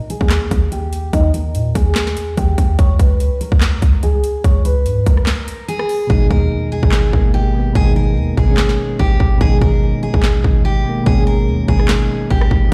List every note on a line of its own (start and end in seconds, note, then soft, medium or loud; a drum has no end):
0.10 0.68 G#4 medium
0.10 closed hi-hat medium
0.21 0.50 D#2 loud
0.21 kick loud
0.30 snare loud
0.30 clap loud
0.30 closed hi-hat medium
0.51 1.11 D#2 loud
0.51 kick loud
0.51 closed hi-hat medium
0.72 1.11 G4 medium
0.72 closed hi-hat medium
0.93 closed hi-hat medium
1.13 1.56 D#2 loud
1.13 1.30 D#4 medium
1.13 kick loud
1.13 closed hi-hat medium
1.34 1.73 A#4 medium
1.34 closed hi-hat medium
1.55 1.74 A#2 loud
1.55 closed hi-hat medium
1.75 2.15 D#2 loud
1.75 2.34 G#4 medium
1.75 kick loud
1.75 closed hi-hat medium
1.95 snare loud
1.95 clap loud
1.95 closed hi-hat medium
2.07 snare medium
2.17 closed hi-hat medium
2.37 2.57 D#2 loud
2.37 2.76 G4 medium
2.37 kick medium
2.37 closed hi-hat medium
2.58 2.78 D#2 loud
2.58 kick medium
2.58 closed hi-hat medium
2.79 2.99 C#2 loud
2.79 2.95 C#5 medium
2.79 kick loud
2.79 closed hi-hat medium
2.99 3.30 C#2 loud
2.99 3.38 B4 medium
2.99 kick medium
2.99 closed hi-hat medium
3.20 closed hi-hat medium
3.41 3.99 A#4 medium
3.41 closed hi-hat medium
3.52 3.74 C#2 loud
3.52 kick loud
3.61 snare loud
3.61 clap loud
3.61 closed hi-hat medium
3.73 3.82 D#2 loud
3.82 4.22 C#2 loud
3.82 kick loud
3.82 closed hi-hat medium
4.03 4.42 G#4 medium
4.03 closed hi-hat medium
4.24 closed hi-hat medium
4.44 4.87 C#2 loud
4.44 4.61 C#5 medium
4.44 kick loud
4.44 closed hi-hat medium
4.65 5.04 B4 medium
4.65 closed hi-hat medium
4.86 5.05 G#2 loud
4.86 closed hi-hat medium
5.06 5.26 C#2 loud
5.06 5.65 A#4 medium
5.06 kick medium
5.06 closed hi-hat medium
5.17 cross-stick medium
5.27 snare loud
5.27 clap loud
5.27 closed hi-hat medium
5.48 closed hi-hat medium
5.68 6.07 G#4 medium
5.68 closed hi-hat medium
5.79 cross-stick loud
5.89 open hi-hat medium
6.07 6.30 G#1 loud
6.07 6.78 B2 loud
6.07 6.79 D#3 medium
6.07 6.80 G#3 medium
6.07 6.26 G#4 medium
6.07 kick loud
6.13 6.81 D#4 loud
6.31 6.61 D#2 loud
6.31 6.69 A#4 medium
6.31 kick loud
6.72 7.30 G#4 medium
6.83 7.12 G#1 loud
6.83 kick loud
6.92 snare loud
6.92 clap loud
7.10 7.73 G#1 loud
7.10 7.47 B2 medium
7.10 7.48 D#3 medium
7.10 7.49 G#3 medium
7.10 kick loud
7.16 7.50 A#3 medium
7.34 7.73 G4 medium
7.53 7.71 B2 medium
7.53 7.72 D#3 medium
7.53 7.73 G#3 medium
7.59 7.74 B3 medium
7.73 8.18 G#1 loud
7.73 8.35 B2 loud
7.73 8.36 D#3 medium
7.73 8.37 G#3 medium
7.73 7.92 G#4 medium
7.73 kick loud
7.79 8.37 D#4 loud
7.96 8.35 A#4 medium
8.17 8.36 D#2 loud
8.37 8.77 G#1 loud
8.37 8.96 G#4 medium
8.37 kick loud
8.45 9.15 B2 medium
8.45 9.16 D#3 medium
8.45 9.17 G#3 medium
8.51 9.18 C#4 medium
8.57 snare loud
8.57 clap loud
8.69 snare medium
8.99 9.19 G#1 loud
8.99 9.38 G4 medium
8.99 kick medium
9.20 9.40 G#1 loud
9.20 kick medium
9.38 9.61 G#1 loud
9.38 10.09 B2 loud
9.38 10.10 D#3 medium
9.38 10.11 G#3 medium
9.38 9.57 G#4 medium
9.38 kick loud
9.44 10.12 D#4 loud
9.61 9.92 G#1 loud
9.61 10.00 A#4 medium
9.61 kick medium
10.03 10.61 G#4 medium
10.14 10.36 G#1 loud
10.14 kick loud
10.23 snare loud
10.23 clap loud
10.35 10.44 A#1 medium
10.42 10.84 G#1 loud
10.42 10.78 B2 medium
10.42 10.79 D#3 medium
10.42 10.80 G#3 medium
10.42 kick loud
10.47 10.81 D#4 medium
10.65 11.04 G4 medium
10.83 11.02 B2 medium
10.83 11.03 D#3 medium
10.83 11.04 G#3 medium
10.89 11.05 A#3 medium
11.03 11.49 G#1 loud
11.03 11.65 B2 loud
11.03 11.66 D#3 medium
11.03 11.67 G#3 medium
11.03 11.23 G#4 medium
11.03 kick loud
11.09 11.68 C#4 loud
11.27 11.66 A#4 medium
11.48 11.67 D#2 loud
11.68 12.08 G#1 loud
11.68 12.27 G#4 medium
11.68 kick medium
11.76 12.46 B2 medium
11.76 12.47 D#3 medium
11.76 12.48 G#3 medium
11.76 cross-stick medium
11.82 12.49 D#4 medium
11.89 snare loud
11.89 clap loud
12.30 12.50 G#1 loud
12.30 12.69 G4 medium
12.30 kick medium
12.41 cross-stick loud
12.51 12.71 G#1 loud
12.51 kick medium
12.69 12.74 D#3 medium
12.69 12.74 G3 medium